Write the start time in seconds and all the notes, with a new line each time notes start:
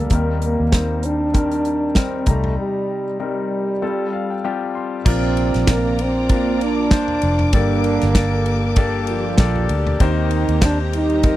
Already playing: G3 A#3 D4 A4 A#4
0.10 D#2 D#3 G3 C4 D#4 A#4, kick, closed hi-hat
0.42 A#3, closed hi-hat
0.60 D#2
0.72 G3 C4 D#4 C5, kick, snare, closed hi-hat
1.03 D4, closed hi-hat
1.34 D#3 G3 C4 A#4, kick, closed hi-hat
1.51 closed hi-hat
1.65 closed hi-hat
1.95 G3 C4 D#4 A#4, kick, snare, closed hi-hat
2.26 C2 C3 G3 A3 C4 D#4 A#5, kick, closed hi-hat, floor tom
2.44 floor tom
2.58 G3
3.20 G3 C4 D#4 A#4
3.82 G3 C4 F4 A4
4.13 F5
4.30 G5
4.44 G3 C4 F4 G4 A5
4.75 C6
5.04 A#1 A#2 C3 C4 D4 F4 A#4 D5 A#5 D6, kick, crash
5.37 ride
5.54 A#1, snare, ride
5.67 D4 F4 A#4, kick, snare, ride
5.72 A#3
5.99 C4, ride
6.29 A#2 A#3 D4 F4 A#4, kick, ride
6.61 D4, ride
6.91 D4 F4 C5, kick, snare, ride
7.08 floor tom
7.22 F1, ride
7.39 floor tom
7.53 G1 G2 D3 A#3 D4 G4 A4 D5 A5, kick, ride
7.84 ride
8.01 G1, snare, ride
8.15 A#3 D4 G4 A4 D5, kick, snare, ride
8.46 ride
8.76 A#3 D4 G4 A4 D5, kick, ride
9.07 F3 F4, ride
9.38 A#1 A#3 D4 G4 A4 D5, kick, snare, ride
9.56 floor tom
9.69 D2, ride
9.87 floor tom
9.99 D#2 D#3 A#3 C4 D#4 G4 C5 A#5, kick, ride
10.31 ride
10.49 D#2, ride
10.61 A#3 C4 D4 G4 C5, kick, snare, ride
10.92 G3 D#4 G4, ride
11.10 ride
11.23 A#3 C4 D#4 G4 A#4, kick, ride